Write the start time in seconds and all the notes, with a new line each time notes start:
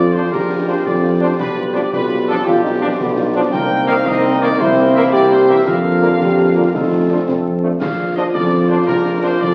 Already playing: F2 F4 D5
0.13 F3 D4 F4 C5
0.32 A#1 F4 G4 A#4 D5, concert bass drum, snare
0.50 F3 D4 F4
0.67 F3 D4 F4 C5
0.85 F2 F4 D5, concert bass drum, snare
1.03 F3 D4 F4
1.21 F3 D4 F4 C5
1.38 B1 F4 B4 D5, concert bass drum, snare, crash
1.57 G3 D4 F4
1.74 F3 G3 D4 F4 D5, snare
1.92 B1 F4 B4 D5, concert bass drum, snare
2.10 G3 D4 F4
2.28 F3 G3 D4 F4 A4
2.45 B1 F4 G4 D5, concert bass drum, snare
2.63 G3 D4 D#4 F4
2.81 F3 G3 D4 F4
3.00 B1 B3, concert bass drum, snare
3.17 G3 D4 D#4 F4
3.35 F3 G3 D4 F4
3.52 C2 A#3 C4 D#4 A#4 G5, concert bass drum, snare, crash
3.87 D#3 A#3 F5, snare
4.06 C2 A#3 C4 D#4 A#4 D#5, concert bass drum, snare
4.42 D#3 A#3 D5
4.59 C2 A#3 C4 E4 A#4 C5, concert bass drum, snare
4.95 E3 A#3 E5
5.12 C2 G4 D5, concert bass drum, snare
5.31 C5
5.49 E3 A#3 E5
5.66 F2 A#3 D4 F4 A#4 F5, concert bass drum, snare, crash
6.02 D3 A#3, snare
6.19 F2 G4, concert bass drum, snare
6.55 D3 A#3 F4
6.74 F2 A3 C4 D#4 F4 A4, concert bass drum, snare
7.09 F3 A3 D4
7.28 F2 C4, concert bass drum, snare
7.62 F3 A3 D4
7.80 A#1 F4 D5 F5, concert bass drum, snare, crash
7.98 A#3 D4 F4
8.16 F3 A#3 D4 F4 D#5, snare
8.34 F2 D5, concert bass drum, snare
8.52 A#3 D4 F4
8.69 F3 A#3 D4 F4 C5
8.87 A#1 A#4, concert bass drum, snare
9.06 A#3 D4 F4
9.23 F3 A#3 D4 F4 C5
9.41 F2 D5, concert bass drum, snare